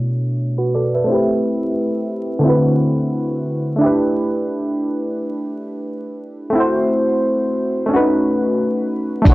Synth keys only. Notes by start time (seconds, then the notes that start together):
Already playing: B2 A3 D4 E4 F#4 C#5
0.58 F#4 B4
0.74 A4 D5
0.95 B4 E5
1.04 A3 C4
1.10 E4 G4
1.15 B4
2.39 D3 A3
2.43 C4 E4
2.47 F#4 B4
3.76 A3 D4
3.81 E4 G4
3.86 B4
6.50 A3 C4
6.55 E4 F#4
6.60 C5
7.86 A3 C#4
7.91 D4 F#4
7.96 D#4 B4
9.22 A3 D4
9.27 E4 F#4